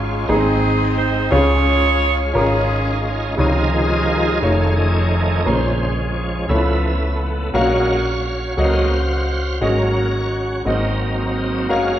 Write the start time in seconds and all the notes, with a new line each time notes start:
Already playing: G#1 G#2 G#3 C#4 F4 G#4
0.27 G#1 G#2 G#3 A#3 C4 D#4 G#4
0.35 C4
0.98 C5
1.31 C#2 C#3 G#3 C#4 F4 G#4 C#5
2.34 G#1 G#3 C#4 D#4 F4 G#4 A#4
3.37 C#2 C3 C#3 D#3 F3 G#3 D#4 F4 G#4 C#5
3.73 F4 G#4
4.41 F1 D#3 A3 C#4 D#4 F4 G#4 C#5
4.76 F3 A3 D#4
5.45 A#1 A#2 C#3 F3 G#3 A#3 C#4 G#4 A#4 C5
5.53 C5
6.49 C#2 C#3 F3 A3 B3 E4 A4 C#5
6.56 F4
7.54 A#1 A#2 F#3 G#3 A#3 C#4 F#4 A#4 C#5 F5
8.25 C#5
8.57 C#2 F#3 G#3 A#3 C#4 F#4 A4 C5 D#5 F5
8.65 A#4
9.61 G#1 G#2 F#3 A#3 C#4 F#4 G#4 A#4 D#5
10.65 G#1 G#2 F#3 A#3 C4 F#4 G#4 D#5
10.70 D#4
11.69 F#1 G#3 A#3 C#4 F#4 A#4 F5